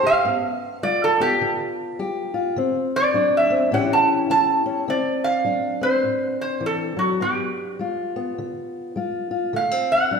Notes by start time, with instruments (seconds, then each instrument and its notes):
Already playing: steel-string acoustic guitar E3 C#4
0.03 steel-string acoustic guitar G4, resonator guitar played with a steel bar F5
0.25 steel-string acoustic guitar G2 B3
0.83 steel-string acoustic guitar G3 F4, resonator guitar played with a steel bar D5
1.04 resonator guitar played with a steel bar A4
1.20 steel-string acoustic guitar B3, resonator guitar played with a steel bar G4
1.41 steel-string acoustic guitar D3
1.99 steel-string acoustic guitar G3 G4
2.34 steel-string acoustic guitar F4
2.56 steel-string acoustic guitar D3 C4
2.96 resonator guitar played with a steel bar D5
3.14 steel-string acoustic guitar F#3 D4
3.37 resonator guitar played with a steel bar E5
3.50 steel-string acoustic guitar C4
3.71 steel-string acoustic guitar A2 E3 C#4 E4 G4, resonator guitar played with a steel bar F#5
3.93 resonator guitar played with a steel bar A5
4.30 steel-string acoustic guitar E3 E4, resonator guitar played with a steel bar A5
4.66 steel-string acoustic guitar C#4
4.88 steel-string acoustic guitar D3 C4, resonator guitar played with a steel bar D5
5.24 resonator guitar played with a steel bar F5
5.44 steel-string acoustic guitar F#3 D4
5.81 steel-string acoustic guitar C4, resonator guitar played with a steel bar C5
6.03 steel-string acoustic guitar A2
6.41 resonator guitar played with a steel bar C5
6.60 steel-string acoustic guitar E3
6.66 resonator guitar played with a steel bar A4
6.97 steel-string acoustic guitar F#3, resonator guitar played with a steel bar F#4
7.20 steel-string acoustic guitar G2 B3, resonator guitar played with a steel bar G4
7.79 steel-string acoustic guitar G3 F4
8.16 steel-string acoustic guitar B3
8.38 steel-string acoustic guitar D3
8.96 steel-string acoustic guitar G3 F4
9.31 steel-string acoustic guitar F4
9.53 steel-string acoustic guitar D3 A3, resonator guitar played with a steel bar F5
9.71 steel-string acoustic guitar C4
9.92 resonator guitar played with a steel bar F#5
10.11 steel-string acoustic guitar F#3 D4